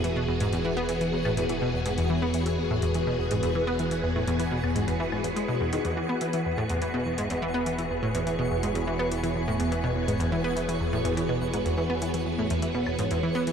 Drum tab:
HH |x--xx--xx--xx--x|x--xx--xx--xx--x|x--xx--xx--xx--x|x--xx--xx--xx--x|
CL |----------x-----|----------------|------x---x-----|----------------|

HH |x--xx--xx--xx--x|x--xx--xx--xx--x|x--xx--xx--xx--x|
CL |----------x-----|----------------|----------x-----|